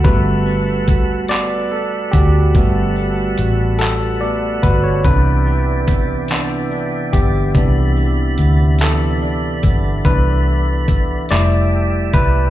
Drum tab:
HH |x-xx-x|x-xx-x|x-xx-x|x-xx-x|
CP |---x--|---x--|---x--|---x--|
BD |o-o--o|o----o|o-o--o|o----o|

HH |x-xx-x|
CP |---x--|
BD |o-o--o|